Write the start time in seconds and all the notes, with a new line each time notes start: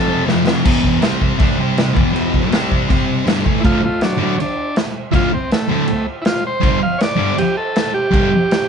Already playing: F2 C3 F3 A4
0.27 F2 C3 F3, snare
0.46 F2 C3 F3, snare
0.65 E2 B2 E3, kick, crash
0.84 kick
1.02 C3 G3 C4, snare, crash
1.22 kick
1.39 D3 A3 D4, kick, crash
1.58 C3 G3 C4
1.77 snare, crash
1.94 E2 B2 E3, kick
2.13 E2 B2 E3, crash
2.34 kick
2.50 C3 G3 C4, snare, crash
2.72 kick
2.89 C3 G3 C4, kick, crash
3.25 G2 D3 G3, snare, crash
3.45 A2 E3 A3, kick
3.61 D2 A3 E4, kick, crash
3.65 A2 D3 F4
3.84 A3 F4
4.01 F#3 D4, snare, crash
4.18 D2 A2 D3
4.22 F#3 D4
4.38 C#4 D4, crash
4.76 snare, crash
5.12 D2 A2 D3 E4 F4, kick, crash
5.34 C4
5.51 A3, snare, crash
5.68 D2 A2 D3 A3
5.87 crash
6.22 E4, crash
6.26 F4, snare
6.47 C5
6.61 G2 D3 G3, kick, crash
6.83 F5
6.98 C#5, snare, crash
7.03 D5
7.16 G2 D3 G3
7.38 G4, crash
7.57 A4
7.76 snare, crash
7.94 G4
8.11 G2 D3 G3, kick, crash
8.51 snare, crash